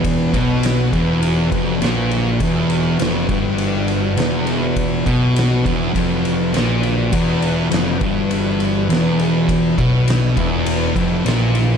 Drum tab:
RD |xxxxxxxx|xxxxxxxx|xxxxxxxx|xxxxxxxx|
SD |--o---o-|--o---o-|--o---o-|--o---o-|
BD |oo-o-o--|o--o----|oo-oo---|o--o----|

RD |xxxxxxxx|
SD |--o---o-|
BD |oo-o-o--|